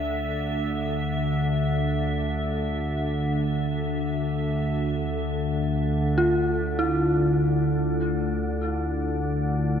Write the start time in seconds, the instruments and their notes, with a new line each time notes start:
Already playing: synth drone D2 D3, synth bell D4, ambient pad E5
4.95 synth drone D2 D3
6.18 synth bell F4
6.79 synth bell E4